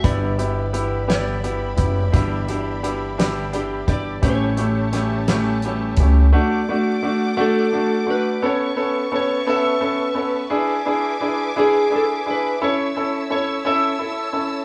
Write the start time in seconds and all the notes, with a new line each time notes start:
0.03 G1 G2 D3 E3 G3 B3 E4 G4 D5 E5 B5, kick, closed hi-hat
0.38 E3 G3 B3 E4 G4, closed hi-hat
0.73 E3 G3 B3 E4 G4, closed hi-hat
1.08 G2 D3 E3 G3 B3 E4 G4 D5, snare, closed hi-hat
1.43 E3 G3 B3 E4 G4, closed hi-hat
1.77 F#1 E3 G3 B3 E4 G4, kick, closed hi-hat
2.12 G1 G2 D3 E3 G3 B3 D4 E4 G4, kick, closed hi-hat
2.47 E3 G3 B3 D4 E4 G4, closed hi-hat
2.83 E3 G3 B3 D4 E4 G4, closed hi-hat
3.18 G2 D3 E3 G3 B3 D4 E4 G4, snare, closed hi-hat
3.52 E3 G3 B3 D4 E4 G4, closed hi-hat
3.87 G1 E3 G3 B3 D4 E4 G4 D5, kick, closed hi-hat
4.22 A1 A2 E3 G3 A3 C#4 E4 G4 C#5 E5 A5, kick, closed hi-hat
4.57 A3 C#4 E4 G4, closed hi-hat
4.61 G3
4.92 E3 G3 A3 C#4 E4 G4, snare, closed hi-hat
5.15 B4
5.28 A2 E3 G3 A3 C#4 E4 G4, snare, closed hi-hat
5.62 E3 G3 A3 C#4 E4 G4, closed hi-hat
5.97 C#2 G3 A3 C#4 E4 G4, kick, closed hi-hat
6.32 A3 D4 F#4 A4 D5 F#5 D6
6.69 A3 D4 F#4
7.03 A3 D4 F#4
7.37 A3 D4 F#4 A4
7.73 A3 D4 F#4
8.07 A3 D4 F#4 B4
8.42 B3 C#4 A4 B4 C#5 E5 A5 C#6
8.76 B3 C#4 A4
9.12 B3 C#4 A4 C#5
9.47 B3 C#4 A4 E5
9.81 B3 C#4 A4
10.14 B3 C#4 A4
10.50 D4 E4 G#4 G#5 D6
10.86 D4 E4 G#4
11.21 D4 E4 G#4
11.56 D4 E4 G#4
11.90 D4 E4 G#4
11.96 A4
12.26 D4 E4 G#4
12.31 B4
12.62 C#4 E4 A4 C#5 A5 E6
12.96 C#4 E4 A4
13.30 C#4 E4 A4 C#5
13.65 C#4 E4 A4 E5
13.99 E4 A4
14.33 C#4 E4 A4